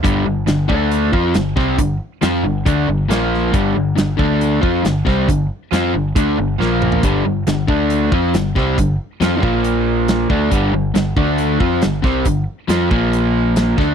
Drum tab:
HH |x---x---x---x---|x---x---x---x---|x---x---x---x---|x---x---x-------|
SD |----o-------o-o-|----o-------o-o-|----o-------o-o-|----o-------o---|
T2 |----------------|----------------|----------------|--------------o-|
FT |----------------|----------------|----------------|---------------o|
BD |o-----o---o---o-|o-------o-------|o-----o---o---o-|o-------o-------|

HH |x---x---x---x---|x---x---x---x---|x---x---x---x---|x---x---x---x---|
SD |----o-------o-o-|----o-------o---|----o-------o-o-|----o-------o-o-|
T2 |----------------|----------------|----------------|----------------|
FT |----------------|----------------|----------------|----------------|
BD |o-----o---o---o-|o-----o-------o-|o-----o---o---o-|o-----o-------o-|